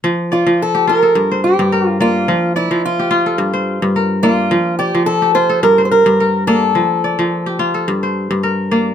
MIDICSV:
0, 0, Header, 1, 3, 480
1, 0, Start_track
1, 0, Key_signature, -1, "major"
1, 0, Tempo, 559180
1, 30, Time_signature, 4, 2, 24, 8
1, 7678, End_track
2, 0, Start_track
2, 0, Title_t, "Steel-string acoustic guitar"
2, 0, Program_c, 0, 25
2, 279, Note_on_c, 0, 65, 64
2, 521, Note_off_c, 0, 65, 0
2, 535, Note_on_c, 0, 69, 77
2, 746, Note_off_c, 0, 69, 0
2, 767, Note_on_c, 0, 70, 74
2, 1205, Note_off_c, 0, 70, 0
2, 1235, Note_on_c, 0, 67, 70
2, 1622, Note_off_c, 0, 67, 0
2, 1622, Note_on_c, 0, 65, 70
2, 1726, Note_off_c, 0, 65, 0
2, 1730, Note_on_c, 0, 65, 80
2, 2197, Note_off_c, 0, 65, 0
2, 2201, Note_on_c, 0, 64, 70
2, 2441, Note_off_c, 0, 64, 0
2, 2451, Note_on_c, 0, 65, 78
2, 3619, Note_off_c, 0, 65, 0
2, 3629, Note_on_c, 0, 65, 82
2, 4105, Note_off_c, 0, 65, 0
2, 4109, Note_on_c, 0, 67, 82
2, 4332, Note_off_c, 0, 67, 0
2, 4346, Note_on_c, 0, 69, 91
2, 4587, Note_off_c, 0, 69, 0
2, 4590, Note_on_c, 0, 72, 83
2, 4831, Note_off_c, 0, 72, 0
2, 4835, Note_on_c, 0, 70, 91
2, 5002, Note_off_c, 0, 70, 0
2, 5022, Note_on_c, 0, 72, 59
2, 5073, Note_off_c, 0, 72, 0
2, 5077, Note_on_c, 0, 70, 86
2, 5520, Note_off_c, 0, 70, 0
2, 5556, Note_on_c, 0, 69, 88
2, 7441, Note_off_c, 0, 69, 0
2, 7678, End_track
3, 0, Start_track
3, 0, Title_t, "Kora"
3, 0, Program_c, 1, 46
3, 33, Note_on_c, 1, 53, 75
3, 272, Note_on_c, 1, 74, 56
3, 389, Note_off_c, 1, 53, 0
3, 399, Note_on_c, 1, 53, 71
3, 640, Note_on_c, 1, 67, 57
3, 751, Note_on_c, 1, 65, 66
3, 880, Note_on_c, 1, 69, 53
3, 990, Note_on_c, 1, 43, 72
3, 1032, Note_off_c, 1, 53, 0
3, 1129, Note_on_c, 1, 72, 57
3, 1223, Note_off_c, 1, 74, 0
3, 1355, Note_off_c, 1, 43, 0
3, 1365, Note_on_c, 1, 43, 71
3, 1480, Note_on_c, 1, 70, 62
3, 1531, Note_off_c, 1, 69, 0
3, 1720, Note_on_c, 1, 74, 55
3, 1721, Note_on_c, 1, 58, 68
3, 1853, Note_off_c, 1, 67, 0
3, 1959, Note_on_c, 1, 53, 73
3, 1991, Note_off_c, 1, 43, 0
3, 2050, Note_off_c, 1, 65, 0
3, 2148, Note_off_c, 1, 72, 0
3, 2193, Note_off_c, 1, 74, 0
3, 2196, Note_on_c, 1, 74, 54
3, 2315, Note_off_c, 1, 53, 0
3, 2325, Note_on_c, 1, 53, 66
3, 2570, Note_on_c, 1, 67, 51
3, 2573, Note_off_c, 1, 70, 0
3, 2667, Note_on_c, 1, 65, 76
3, 2800, Note_on_c, 1, 69, 57
3, 2852, Note_off_c, 1, 58, 0
3, 2903, Note_on_c, 1, 43, 71
3, 2951, Note_off_c, 1, 53, 0
3, 3034, Note_on_c, 1, 72, 57
3, 3147, Note_off_c, 1, 74, 0
3, 3271, Note_off_c, 1, 43, 0
3, 3281, Note_on_c, 1, 43, 70
3, 3398, Note_on_c, 1, 70, 58
3, 3450, Note_off_c, 1, 69, 0
3, 3632, Note_on_c, 1, 58, 66
3, 3633, Note_on_c, 1, 74, 57
3, 3783, Note_off_c, 1, 67, 0
3, 3872, Note_on_c, 1, 53, 75
3, 3911, Note_off_c, 1, 43, 0
3, 3966, Note_off_c, 1, 65, 0
3, 4054, Note_off_c, 1, 72, 0
3, 4111, Note_off_c, 1, 74, 0
3, 4115, Note_on_c, 1, 74, 58
3, 4235, Note_off_c, 1, 53, 0
3, 4245, Note_on_c, 1, 53, 70
3, 4480, Note_on_c, 1, 67, 55
3, 4491, Note_off_c, 1, 70, 0
3, 4592, Note_on_c, 1, 65, 72
3, 4717, Note_on_c, 1, 69, 60
3, 4768, Note_off_c, 1, 58, 0
3, 4832, Note_on_c, 1, 43, 77
3, 4872, Note_off_c, 1, 53, 0
3, 4963, Note_on_c, 1, 72, 58
3, 5066, Note_off_c, 1, 74, 0
3, 5191, Note_off_c, 1, 43, 0
3, 5201, Note_on_c, 1, 43, 74
3, 5324, Note_on_c, 1, 70, 57
3, 5376, Note_off_c, 1, 69, 0
3, 5558, Note_on_c, 1, 74, 61
3, 5559, Note_on_c, 1, 58, 70
3, 5693, Note_off_c, 1, 67, 0
3, 5795, Note_on_c, 1, 53, 69
3, 5832, Note_off_c, 1, 43, 0
3, 5891, Note_off_c, 1, 65, 0
3, 5982, Note_off_c, 1, 72, 0
3, 6041, Note_off_c, 1, 74, 0
3, 6045, Note_on_c, 1, 74, 57
3, 6160, Note_off_c, 1, 53, 0
3, 6170, Note_on_c, 1, 53, 65
3, 6407, Note_on_c, 1, 67, 58
3, 6417, Note_off_c, 1, 70, 0
3, 6518, Note_on_c, 1, 65, 69
3, 6647, Note_on_c, 1, 69, 53
3, 6698, Note_off_c, 1, 58, 0
3, 6763, Note_on_c, 1, 43, 68
3, 6794, Note_off_c, 1, 53, 0
3, 6892, Note_on_c, 1, 72, 55
3, 6996, Note_off_c, 1, 74, 0
3, 7119, Note_off_c, 1, 43, 0
3, 7130, Note_on_c, 1, 43, 69
3, 7239, Note_on_c, 1, 70, 60
3, 7291, Note_off_c, 1, 69, 0
3, 7481, Note_on_c, 1, 58, 64
3, 7483, Note_on_c, 1, 74, 56
3, 7619, Note_off_c, 1, 67, 0
3, 7678, Note_off_c, 1, 43, 0
3, 7678, Note_off_c, 1, 58, 0
3, 7678, Note_off_c, 1, 65, 0
3, 7678, Note_off_c, 1, 70, 0
3, 7678, Note_off_c, 1, 72, 0
3, 7678, Note_off_c, 1, 74, 0
3, 7678, End_track
0, 0, End_of_file